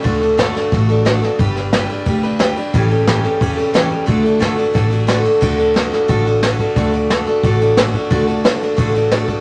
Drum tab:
CC |--------|--------|--------|--------|
RD |xxxxxxxx|xxxxxxxx|xxxxxxxx|xxxxxxxx|
SD |--ooo-oo|-oo---o-|--oo--o-|--o-o-o-|
BD |o-o-o---|o-o-o---|o-o-o---|o-o-o---|

CC |x-------|--------|--------|
RD |-xxxxxxx|xxxxxxxx|xxxxxxxx|
SD |--oo--o-|--o---o-|--oo--o-|
BD |o---o--o|o---o--o|o---o--o|